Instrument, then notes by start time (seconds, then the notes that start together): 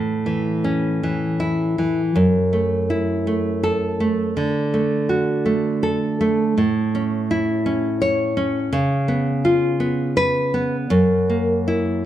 nylon-string guitar
Already playing: A2
0.26 E3
0.64 C#4
1.03 E3
1.40 E4
1.78 E3
2.15 F#2
2.53 A3
2.90 E4
3.27 A3
3.63 A4
4.00 A3
4.37 D3
4.74 A3
5.09 F#4
5.45 A3
5.83 A4
6.21 A3
6.58 A2
6.95 C#4
7.31 E4
7.66 C#4
8.02 C#5
8.37 C#4
8.73 C#3
9.08 B3
9.45 F4
9.80 B3
10.17 B4
10.54 B3
10.90 F#2
11.30 A#3
11.68 E4